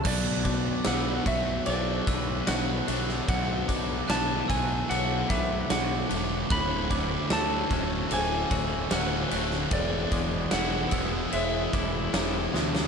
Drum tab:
CC |x---------------|----------------|----------------|----------------|
RD |--x-x-x-x-x-x-x-|x-x-x-x-x-x-x-x-|x-x-x-x-x-x-x-x-|x-x-x-x-x-x-x---|
SD |----o-------o--o|----o-----o-o---|----o-------o--o|----o-------o-oo|
BD |o-o---o---o-----|o-o---o---o-----|o-o---o---o-----|o-o---o---o-----|